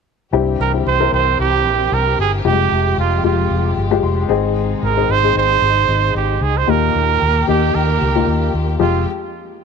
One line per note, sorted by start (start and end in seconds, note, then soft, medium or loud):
0.32 0.55 C2 medium
0.32 1.08 G2 medium
0.32 2.43 E3 medium
0.32 0.63 C4 medium
0.32 2.43 C4 medium
0.32 0.63 E4 medium
0.32 0.63 G4 medium
0.32 4.26 G4 medium
0.60 0.81 C2 medium
0.60 0.72 A#4 medium
0.74 0.93 C4 medium
0.74 0.93 E4 medium
0.74 0.93 G4 medium
0.86 1.08 C2 medium
0.86 1.11 C5 medium
1.00 1.80 C4 medium
1.00 1.80 E4 medium
1.00 1.80 A#4 medium
1.13 1.34 C2 medium
1.13 1.38 C5 medium
1.39 1.66 C2 medium
1.39 1.95 G4 medium
1.66 1.87 A#1 medium
1.92 2.14 C2 medium
1.92 2.19 A#4 medium
2.18 2.40 G1 medium
2.18 2.32 G#4 medium
2.44 2.66 F1 medium
2.44 3.20 C3 medium
2.44 4.29 F3 medium
2.44 2.52 G3 soft
2.44 6.65 G#3 medium
2.44 3.05 F4 medium
2.44 3.05 G4 medium
2.44 2.95 G4 medium
2.51 3.08 G#3 medium
2.72 2.93 F1 medium
2.98 3.20 F1 medium
2.98 3.23 F4 medium
3.24 3.46 F1 medium
3.24 3.74 G#3 medium
3.24 3.74 F4 medium
3.24 3.74 G4 medium
3.51 3.73 F1 medium
3.77 3.99 G1 medium
3.91 4.30 G#3 medium
3.91 4.30 F4 medium
3.91 4.30 G4 medium
4.03 4.25 F1 medium
4.03 4.52 C6 medium
4.29 4.73 G#1 medium
4.29 5.05 G#2 medium
4.29 6.65 C3 medium
4.29 5.05 D#3 medium
4.29 4.82 C4 medium
4.29 6.65 D#4 medium
4.29 4.83 D#4 medium
4.29 4.83 G#4 medium
4.82 5.04 G#1 medium
4.82 5.13 A#4 medium
4.96 5.16 C4 medium
4.96 5.16 D#4 medium
4.96 5.16 G#4 medium
5.09 5.31 G#1 medium
5.09 5.37 C5 medium
5.23 6.03 C4 medium
5.23 6.03 D#4 medium
5.23 6.03 G#4 medium
5.35 5.57 G#1 medium
5.35 6.12 C5 loud
5.62 5.84 G#1 medium
5.88 6.10 G#1 medium
6.15 6.37 G#1 medium
6.15 6.44 G4 medium
6.41 6.63 C#2 medium
6.41 6.59 G#4 medium
6.58 6.71 C5 medium
6.67 6.90 D#2 medium
6.67 7.43 A#2 medium
6.67 8.77 D#3 medium
6.67 8.77 A#3 medium
6.67 7.28 A#3 medium
6.67 7.28 D#4 medium
6.67 8.77 G4 medium
6.67 7.28 G4 medium
6.67 7.48 A#4 medium
6.95 7.16 D#2 medium
7.22 7.43 D#2 medium
7.47 7.70 D#2 medium
7.47 7.97 A#3 medium
7.47 7.97 D#4 medium
7.47 7.97 G4 medium
7.47 7.76 G4 medium
7.75 7.96 D#2 medium
7.75 8.54 A#4 medium
8.01 8.23 C#2 medium
8.15 8.64 A#3 medium
8.15 8.65 D#4 medium
8.15 8.64 F4 medium
8.27 8.49 D#2 medium
8.54 8.75 D#2 medium
8.79 9.05 F1 medium
8.79 9.04 F2 medium
8.79 9.04 F3 medium
8.79 9.04 G#3 medium
8.79 9.04 F4 medium
8.79 9.05 F4 medium
8.79 9.04 G4 medium